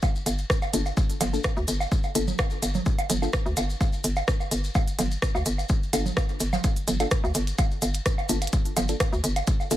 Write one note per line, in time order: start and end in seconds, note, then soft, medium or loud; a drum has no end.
0.02 kick loud
0.02 low woodblock medium
0.02 maracas soft
0.16 maracas soft
0.26 0.45 G1 loud
0.26 open hi-hat medium
0.26 low woodblock soft
0.26 maracas medium
0.38 maracas soft
0.50 kick loud
0.50 cross-stick medium
0.50 maracas medium
0.62 low woodblock medium
0.62 maracas soft
0.73 0.92 G1 medium
0.73 0.80 A#3 medium
0.73 0.80 D4 medium
0.73 0.80 F4 medium
0.73 0.80 A4 loud
0.73 open hi-hat medium
0.73 maracas medium
0.86 low woodblock soft
0.86 maracas soft
0.97 kick loud
0.97 maracas medium
1.10 open hi-hat soft
1.10 maracas soft
1.21 1.39 G1 loud
1.21 open hi-hat medium
1.21 low conga medium
1.21 low woodblock medium
1.21 maracas loud
1.33 1.39 A#3 medium
1.33 1.39 D4 medium
1.33 1.39 F4 medium
1.33 1.39 A4 medium
1.33 maracas soft
1.44 kick loud
1.44 cross-stick loud
1.44 low woodblock soft
1.44 maracas medium
1.57 1.65 D2 medium
1.57 maracas soft
1.68 1.86 G1 loud
1.68 open hi-hat loud
1.68 maracas loud
1.80 low woodblock medium
1.80 maracas soft
1.92 kick loud
1.92 maracas medium
2.03 low woodblock soft
2.03 maracas soft
2.15 2.34 G1 loud
2.15 2.26 A#3 medium
2.15 2.26 D4 medium
2.15 2.26 F4 medium
2.15 2.26 A4 medium
2.15 open hi-hat loud
2.15 maracas loud
2.28 low conga medium
2.28 maracas soft
2.38 kick loud
2.38 cross-stick loud
2.38 low woodblock medium
2.38 maracas soft
2.50 maracas soft
2.62 2.81 G1 medium
2.62 open hi-hat medium
2.62 low woodblock soft
2.62 maracas medium
2.74 low conga medium
2.74 maracas soft
2.86 kick loud
2.86 maracas soft
2.98 open hi-hat soft
2.98 low woodblock medium
2.98 maracas soft
3.10 3.28 G1 loud
3.10 open hi-hat loud
3.10 low conga medium
3.10 maracas loud
3.22 3.28 A#3 medium
3.22 3.28 D4 medium
3.22 3.28 F4 medium
3.22 3.28 A4 medium
3.22 low woodblock soft
3.22 maracas soft
3.33 kick loud
3.33 cross-stick loud
3.33 maracas medium
3.46 3.54 D2 medium
3.46 maracas soft
3.57 3.75 G1 loud
3.57 open hi-hat loud
3.57 low woodblock medium
3.57 maracas loud
3.70 maracas soft
3.81 kick loud
3.81 low woodblock soft
3.81 maracas medium
3.93 maracas soft
4.04 4.23 G1 loud
4.04 open hi-hat loud
4.04 maracas medium
4.16 low woodblock medium
4.16 maracas soft
4.28 kick loud
4.28 cross-stick medium
4.28 maracas medium
4.40 low woodblock soft
4.40 maracas soft
4.51 4.70 G1 medium
4.51 open hi-hat loud
4.51 maracas medium
4.64 maracas soft
4.75 kick loud
4.75 low woodblock medium
4.75 maracas medium
4.87 open hi-hat soft
4.87 maracas soft
4.99 5.17 G1 loud
4.99 open hi-hat medium
4.99 low conga medium
4.99 low woodblock soft
4.99 maracas medium
5.11 maracas soft
5.22 kick loud
5.22 cross-stick loud
5.22 maracas medium
5.35 5.43 D2 medium
5.35 low woodblock medium
5.35 maracas soft
5.46 5.64 G1 loud
5.46 open hi-hat loud
5.46 maracas medium
5.58 low woodblock soft
5.58 maracas soft
5.69 kick loud
5.69 maracas medium
5.83 maracas soft
5.93 6.12 G1 loud
5.93 6.04 A#3 medium
5.93 6.04 D4 medium
5.93 6.04 F4 medium
5.93 6.04 A4 medium
5.93 open hi-hat medium
5.93 low woodblock medium
5.93 maracas loud
6.06 low conga medium
6.06 maracas soft
6.17 kick loud
6.17 cross-stick medium
6.17 low woodblock soft
6.17 maracas medium
6.29 maracas soft
6.40 6.59 G1 medium
6.40 open hi-hat loud
6.40 maracas loud
6.53 low conga medium
6.53 low woodblock medium
6.53 maracas soft
6.64 kick loud
6.64 closed hi-hat medium
6.64 low woodblock soft
6.64 maracas medium
6.76 open hi-hat soft
6.76 maracas soft
6.88 7.06 G1 loud
6.88 open hi-hat medium
6.88 low conga medium
6.88 maracas medium
7.00 7.06 A#3 medium
7.00 7.06 D4 medium
7.00 7.06 F4 medium
7.00 7.06 A4 medium
7.00 closed hi-hat soft
7.00 low woodblock medium
7.00 maracas soft
7.11 kick loud
7.11 cross-stick medium
7.11 closed hi-hat medium
7.11 maracas soft
7.24 7.32 D2 medium
7.24 low woodblock soft
7.24 maracas soft
7.34 7.53 G1 loud
7.34 open hi-hat medium
7.34 maracas medium
7.47 closed hi-hat soft
7.47 maracas soft
7.58 kick loud
7.58 closed hi-hat medium
7.58 low woodblock medium
7.58 maracas soft
7.71 maracas soft
7.82 8.01 G1 medium
7.82 open hi-hat medium
7.82 low woodblock soft
7.82 maracas medium
7.94 closed hi-hat soft
7.94 maracas soft
8.06 kick loud
8.06 cross-stick medium
8.06 closed hi-hat soft
8.06 maracas medium
8.18 low woodblock medium
8.18 maracas soft
8.29 8.48 G1 medium
8.29 8.36 A#3 medium
8.29 8.36 D4 medium
8.29 8.36 F4 medium
8.29 8.36 A4 loud
8.29 open hi-hat medium
8.29 maracas loud
8.42 closed hi-hat soft
8.42 low woodblock soft
8.42 maracas soft
8.47 closed hi-hat soft
8.53 kick loud
8.53 closed hi-hat medium
8.53 maracas soft
8.65 open hi-hat soft
8.65 maracas soft
8.77 8.95 G1 loud
8.77 open hi-hat medium
8.77 low conga medium
8.77 low woodblock medium
8.77 maracas medium
8.89 8.95 A#3 medium
8.89 8.95 D4 medium
8.89 8.95 F4 medium
8.89 8.95 A4 medium
8.89 closed hi-hat soft
8.89 maracas soft
9.00 kick loud
9.00 cross-stick medium
9.00 closed hi-hat medium
9.00 low woodblock soft
9.00 maracas soft
9.13 9.21 D2 medium
9.13 maracas soft
9.24 9.42 G1 loud
9.24 open hi-hat medium
9.24 maracas medium
9.36 closed hi-hat soft
9.36 low woodblock medium
9.36 maracas soft
9.47 kick loud
9.47 closed hi-hat medium
9.47 maracas soft
9.60 low woodblock soft
9.60 maracas soft
9.71 9.77 G1 loud
9.71 9.77 A#3 medium
9.71 9.77 D4 medium
9.71 9.77 F4 medium
9.71 9.77 A4 medium
9.71 open hi-hat medium
9.71 maracas medium